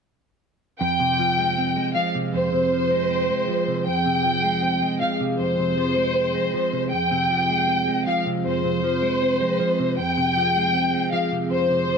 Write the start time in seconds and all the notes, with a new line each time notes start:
0.80 F2 F3 C4 G#4 G5
1.00 C3
1.19 F3
1.38 G#3
1.57 C4
1.76 G#3
1.95 F3 F5
2.15 C3
2.34 F2 C5
2.53 C3
2.72 F3
2.91 G#3
3.10 C4
3.29 G#3
3.48 F3
3.68 C3
3.87 F2 G5
4.06 C3
4.25 F3
4.44 G#3
4.63 C4
4.82 G#3
5.01 F3 F5
5.20 C3
5.39 F2 C5
5.58 C3
5.78 F3
5.96 G#3
6.16 C4
6.35 G#3
6.54 F3
6.73 C3
6.92 F2 F3 G5
7.11 C3
7.30 F3
7.49 G#3
7.69 C4
7.88 G#3
8.07 F3 F5
8.26 C3
8.45 F2 C5
8.64 C3
8.83 F3
9.02 G#3
9.22 C4
9.40 G#3
9.59 F3
9.79 C3
9.98 F2 C4 G#4 G5
10.17 C3
10.37 F3
10.55 G#3
10.74 C4
10.93 G#3
11.12 F3 F5
11.32 C3
11.50 F2 C5
11.70 C3
11.89 F3